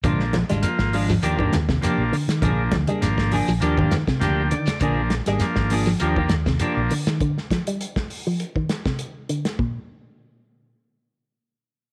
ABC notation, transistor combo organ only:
X:1
M:4/4
L:1/8
Q:"Swing 16ths" 1/4=101
K:Bbmix
V:1 name="Transistor combo organ"
[F,B,D] z [F,B,F] z [F,B,D] z [F,B,D] z | [F,B,D] z [F,B,D] z [F,B,D] z [F,B,Dg] d | [F,B,D] z [F,B,D] z [F,B,D] z [F,B,D] z | z8 |
z8 |]